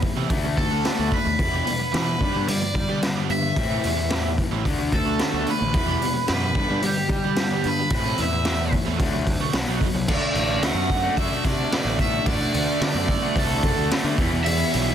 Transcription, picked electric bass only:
0.17 C3
0.29 D2
0.99 D2
1.26 D#2
1.39 E2
1.94 E3
2.20 G2
2.36 G2
2.49 G3
2.75 G3
2.89 G3
3.30 G2
3.56 A2
3.84 E2
4.51 A1
4.65 D2
5.34 D2
5.62 A1
5.74 E2
6.29 F#2
6.55 G2
6.70 G2
6.83 G3
7.09 G3
7.25 G3
7.65 G2
7.91 A2
8.19 E2
8.87 E2
8.99 D2
9.54 B1
9.68 B1
9.95 C2
10.08 D2
10.34 A1
10.61 D2
10.74 F#2
11.17 F#2
11.45 C3
11.85 A1
12.26 A1
12.54 D2
12.81 D3
12.94 F#2
13.36 C2
13.78 D2
14.04 D3
14.18 E2
14.75 B1

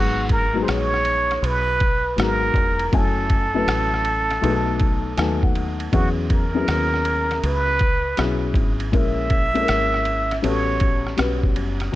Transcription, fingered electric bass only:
Already playing: G#1
0.68 A#1
1.43 B1
2.18 G#1
2.54 E1
2.93 F#1
3.67 A1
4.43 B1
5.18 D#2
5.93 E2
6.68 D#2
7.43 C#2
8.19 B1
8.54 G#1
8.93 A#1
9.69 G#1
10.44 A1
11.19 B1
11.57 F#1

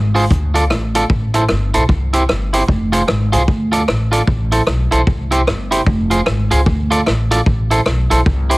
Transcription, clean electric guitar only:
0.15 F4 G#4 C5
0.54 F4 A4 D5
0.95 F4 A4 D5
1.10 muted clean electric guitar stroke
1.34 E4 A4 C5
1.74 E4 A4 C5
2.13 E4 G4 C5
2.53 E4 G4 C5
2.68 muted clean electric guitar stroke
2.92 F4 G#4 C5
3.07 muted clean electric guitar stroke
3.32 F4 G#4 C5
3.72 F4 A4 D5
4.12 F4 A4 D5
4.27 muted clean electric guitar stroke
4.52 E4 A4 C5
4.91 E4 A4 C5
5.31 E4 G4 C5
5.71 E4 G4 C5
5.87 muted clean electric guitar stroke
6.10 F4 G#4 C5
6.26 muted clean electric guitar stroke
6.51 F4 G#4 C5
6.91 F4 A4 D5
7.31 F4 A4 D5
7.46 muted clean electric guitar stroke
7.71 E4 A4 C5
8.10 E4 A4 C5
8.50 E4 G4 C5

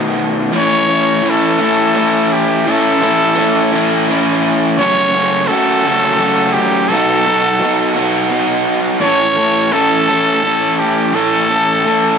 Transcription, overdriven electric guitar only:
Already playing: B2 D#3 A3 B3 F#4
0.52 A2 E3 A3 C#4 E4
0.87 A3 C#4 E4
1.23 E3 A3 C#4 E4
1.58 A2 E3 A3 C#4 E4
1.94 E3 A3 C#4 E4
2.66 A2 E3 A3 C#4 E4
3.01 A3 C#4 E4
3.36 E3 A3 C#4 E4
3.72 A2 E3 A3 C#4 E4
4.08 E3 A3 C#4 E4
4.78 F#2 C#3 F#3 A3 C#4 F#4
5.13 F#3 A3 C#4 F#4
5.48 F#3 A3 C#4 F#4
5.84 F#2 C#3 F#3 A3 C#4 F#4
6.18 F#3 A3 C#4 F#4
6.89 B2 F#3 B3 D#4 F#4
7.24 B3 D#4 F#4
7.60 F#3 B3 D#4 F#4
7.94 B2 F#3 B3 D#4 F#4
8.30 F#3 B3 D#4 F#4
9.00 A2 E3 A3 C#4 A4
9.36 A3 C#4 A4
9.72 E3 A3 C#4 A4
10.08 A2 E3 A3 C#4 A4
10.43 E3 A3 C#4 A4
11.13 A2 E3 A3 C#4 A4
11.49 A3 C#4 A4
11.84 E3 A3 C#4 A4

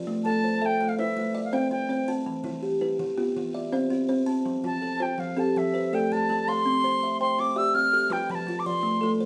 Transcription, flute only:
0.24 A5
0.61 G5 A5
0.89 F5
0.98 E5
1.44 F5
1.54 G5
1.72 G5
4.65 A5
5.02 G5
5.20 F5
5.39 A5
5.58 E5
5.94 G5
6.12 A5
6.48 C6
7.21 C6
7.40 D6
7.58 E6
7.75 F6
8.12 G5
8.31 B5
8.35 A5
8.59 D6
8.66 C6

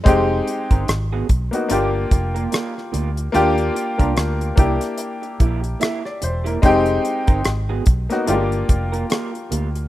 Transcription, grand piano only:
0.04 G#3 C4 D#4 G4
1.51 A#3 B3 D#4 F#4
1.69 A#3 D4 F4 G4
3.32 A#3 D4 F4 G4
3.98 A#3 D4 F4 A#4
4.56 A#3 D4 E4 G4
5.81 E5
6.05 D5
6.24 C5
6.47 A#4
6.62 G#3 C4 D#4 G4
8.10 A#3 B3 D#4 F#4
8.26 G#3 D4 F4 G4
8.32 A#3

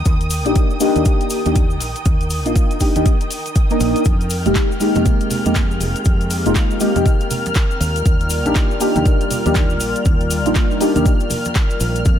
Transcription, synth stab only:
0.45 A#3 D4 D#4 G4
0.80 A#3 D4 D#4 G4
0.95 A#3 D4 D#4 G4
1.45 A#3 D4 D#4 G4
2.45 A#3 D4 D#4 F4
2.80 A#3 D4 D#4 G4
2.95 A#3 D4 D#4 G4
3.70 A#3 D4 D#4 A#4
4.45 G#3 A#3 D#4 G4
4.80 G#3 A#3 D#4 G4
4.95 G#3 A#3 D#4 G4
5.45 G#3 A#3 D#4 G4
6.45 G#3 A#3 D#4 F4
6.80 G#3 A#3 D#4 G4
6.95 G#3 A#3 D#4 G4
8.45 A#3 D4 D#4 G4
8.80 A#3 D4 D#4 G4
8.95 A#3 D4 D#4 G4
9.45 A#3 D4 D#4 G4
10.45 A#3 D4 D#4 F4
10.80 A#3 D4 D#4 G4
10.95 A#3 D4 D#4 G4

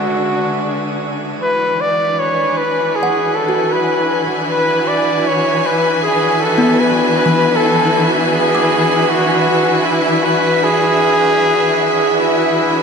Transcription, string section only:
Already playing: D3 D4 F#4 E5
1.40 E3
2.01 D4
2.22 G#5
3.11 F#4
4.15 E5

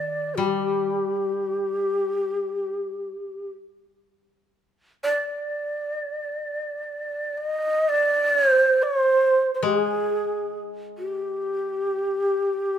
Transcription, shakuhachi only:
Already playing: D5
0.35 F#4
0.47 G4
5.03 D5
7.38 D#5
7.89 D5
8.49 C5
8.83 C#5
9.00 C5
9.54 C5
9.64 G#4
10.98 G4

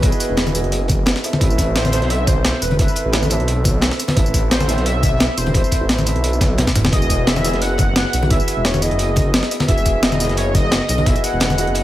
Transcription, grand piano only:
Already playing: E4 F#4 G#4 D#5
0.00 B3 E4 F#4
0.04 G#4 D#5
0.53 B3 E4 F#4 G#4
0.57 D#5
1.23 C4 E4 A4 B4 E5
1.39 C4 E4 A4 B4
1.43 E5
1.91 C4 E4 A4 C5
1.95 E5
2.77 C4 E4 A4 B4
2.81 E5
3.28 C4 E4 A4 B4
3.33 E5
4.14 C4 E4 A4 B4
4.19 E5
4.66 C4 E4 A4 B4
4.71 E5
5.52 C4 E4 A4 C5
5.57 E5
6.04 C4 E4 A4 B4
6.09 E5
6.90 B3 E4 F#4 G#4
6.95 D#5
7.42 B3 E4 F#4 G#4
7.47 D#5
8.28 B3 E4 F#4 G#4
8.33 E5
8.80 B3 E4 F#4 G#4
8.84 D#5
9.66 B3 E4 F#4 G#4
9.71 E5
10.18 B3 E4 F#4 G#4
10.23 D#5
11.04 B3 E4 F#4 G#4
11.09 D#5
11.56 B3 E4 F#4 G#4
11.61 D#5

